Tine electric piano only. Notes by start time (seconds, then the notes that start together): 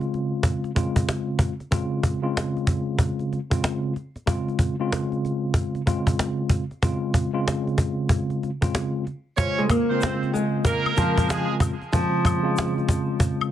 Already playing: C#3 G#3 C4 F4
0.75 C#3 G#3 C4 F4
1.71 C#3 G#3 C4 F4
2.22 C#3 G#3 C4 F4
3.51 C#3 G#3 C4 F4
4.26 C#3 G#3 C4 F4
4.79 C#3 G#3 C4 F4
5.86 C#3 G#3 C4 F4
6.82 C#3 G#3 C4 F4
7.33 C#3 G#3 C4 F4
8.61 C#3 G#3 C4 F4
9.37 C#3 G#3 F4 C5
9.90 C#3 G#3 C4 F4
10.97 C#3 G#3 C4 F4
11.93 C#3 G#3 C4 F4
12.43 C#3 G#3 C4 F4